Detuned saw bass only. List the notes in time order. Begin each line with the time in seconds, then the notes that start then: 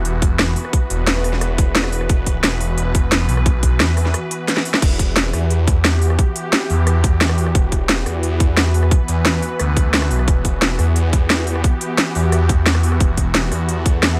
0.05 E1
0.39 E1
0.90 E1
2.10 E1
2.44 E1
2.78 E1
3.12 E1
3.29 B1
3.80 E2
4.82 E1
5.33 E2
6.70 E2
7.55 E1
8.06 E2
9.08 E2
9.60 D2
10.11 B1
10.79 E2
12.15 E2
13.00 E1
13.52 E2